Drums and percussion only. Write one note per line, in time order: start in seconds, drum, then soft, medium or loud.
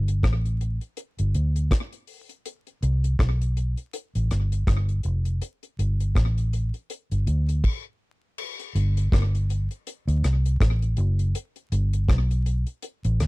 0.08 closed hi-hat medium
0.23 kick loud
0.23 cross-stick loud
0.23 closed hi-hat medium
0.45 closed hi-hat medium
0.61 closed hi-hat medium
0.81 closed hi-hat soft
0.97 closed hi-hat medium
1.19 closed hi-hat medium
1.34 closed hi-hat medium
1.56 closed hi-hat medium
1.71 kick loud
1.71 cross-stick loud
1.71 closed hi-hat loud
1.92 closed hi-hat soft
2.07 open hi-hat medium
2.29 closed hi-hat medium
2.46 closed hi-hat medium
2.67 closed hi-hat soft
2.83 closed hi-hat medium
3.04 closed hi-hat medium
3.19 kick loud
3.19 cross-stick loud
3.19 closed hi-hat medium
3.41 closed hi-hat medium
3.57 closed hi-hat medium
3.77 closed hi-hat soft
3.93 closed hi-hat medium
4.15 closed hi-hat medium
4.31 cross-stick medium
4.31 closed hi-hat medium
4.52 closed hi-hat medium
4.67 kick loud
4.67 cross-stick loud
4.67 closed hi-hat loud
4.89 closed hi-hat soft
5.03 closed hi-hat medium
5.25 closed hi-hat medium
5.42 closed hi-hat loud
5.63 closed hi-hat soft
5.79 closed hi-hat medium
6.00 closed hi-hat medium
6.15 kick loud
6.15 cross-stick loud
6.15 closed hi-hat medium
6.38 closed hi-hat medium
6.53 closed hi-hat medium
6.74 closed hi-hat soft
6.90 closed hi-hat medium
7.11 closed hi-hat medium
7.27 closed hi-hat medium
7.49 closed hi-hat medium
7.64 kick loud
7.64 crash medium
8.38 crash medium
8.59 closed hi-hat soft
8.76 closed hi-hat medium
8.97 closed hi-hat medium
9.12 kick loud
9.12 cross-stick loud
9.12 closed hi-hat medium
9.35 closed hi-hat medium
9.50 closed hi-hat medium
9.71 closed hi-hat soft
9.87 closed hi-hat medium
10.08 closed hi-hat medium
10.24 cross-stick medium
10.24 closed hi-hat medium
10.46 closed hi-hat medium
10.60 kick loud
10.60 cross-stick loud
10.60 closed hi-hat loud
10.82 closed hi-hat soft
10.97 closed hi-hat medium
11.19 closed hi-hat medium
11.35 closed hi-hat medium
11.56 closed hi-hat medium
11.72 closed hi-hat medium
11.93 closed hi-hat medium
12.09 kick loud
12.09 cross-stick loud
12.09 closed hi-hat medium
12.31 closed hi-hat medium
12.46 closed hi-hat medium
12.67 closed hi-hat soft
12.82 closed hi-hat medium
13.04 closed hi-hat medium
13.20 cross-stick medium
13.20 closed hi-hat medium